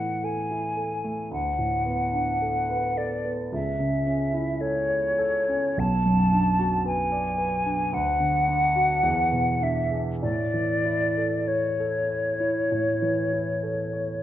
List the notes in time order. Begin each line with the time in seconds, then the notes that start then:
Already playing: A2 E3 A3 E4 A4 F#5
0.24 A4 G#5
0.51 E4
0.77 A4
1.04 A3
1.31 D2 F#5
1.59 A2
1.86 B3
2.13 D4
2.42 A4
2.70 B4
2.97 A4 D5
3.25 B3
3.52 C#2 E5
3.79 C#3
4.07 C#4
4.34 E4
4.61 A4 C#5
4.89 C#5
5.18 A4
5.48 C#4
5.77 B1 A5
6.06 F#2
6.32 D4
6.59 F#4
6.86 B4 G#5
7.12 D5
7.38 B4
7.66 D4
7.93 D2 F#5
8.19 D3
8.48 D4
8.76 F#4
9.03 E2
9.32 B2
9.61 D4 E5
9.92 G#4
10.22 A2 D5
10.54 E3
10.85 E4
11.17 A4
11.48 C#5
11.80 A4
12.10 C#5
12.40 E4
12.72 A2
13.02 E3
13.33 E4
13.63 A4
13.93 C#5